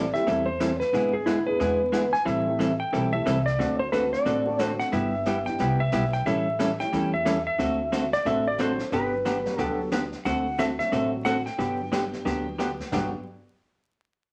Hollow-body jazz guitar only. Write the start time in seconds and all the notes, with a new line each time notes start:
0.27 E3 G3 C4 E4 A4
0.60 E3 G3 C4 E4 A4
0.93 D3 G#3 B3 E4 G#4
1.26 D3 G#3 B3 E4 G#4
1.59 D3 G#3 B3 E4 G#4
1.92 D3 G#3 B3 E4 G#4
2.25 E3 G3 C4 E4 A4
2.59 E3 G3 C4 E4 A4
2.93 E3 G3 C4 E4 A4
3.26 E3 G3 C4 E4 A4
3.59 D3 A3 C4 F#4 A4
3.92 D3 A3 C4 F#4 A4
4.26 D3 A3 C4 F#4 A4
4.59 D3 A3 C4 F#4 A4
4.92 G3 B3 E4 G4
5.26 G3 B3 E4 G4
5.60 G3 B3 E4 G4
5.93 G3 B3 E4 G4
6.26 E3 G3 C#4 E4 A4
6.59 E3 G3 C#4 E4 A4
6.92 E3 G3 C#4 E4 A4
7.25 E3 G3 C#4 E4 A4
7.59 D3 A3 C4 F#4 A4
7.92 D3 A3 C4 F#4 A4
8.26 D3 A3 C4 F#4 A4
8.59 D3 A3 C4 F#4 A4
8.92 D3 F#3 B3 D4 G4
9.25 D3 F#3 B3 D4 G4
9.58 D3 F#3 B3 D4 G4
9.92 D3 F#3 B3 D4 G4
10.25 D3 A3 C4 F#4 A4
10.58 D3 A3 C4 F#4 A4
10.92 D3 A3 C4 F#4 A4
11.25 D3 A3 C4 F#4 A4
11.58 D3 F#3 B3 D4 G4
11.92 D3 F#3 B3 D4 G4
12.25 D3 F#3 B3 D4 G4
12.58 D3 F#3 B3 D4 G4
12.92 G2 D3 F#3 B3 D4 G4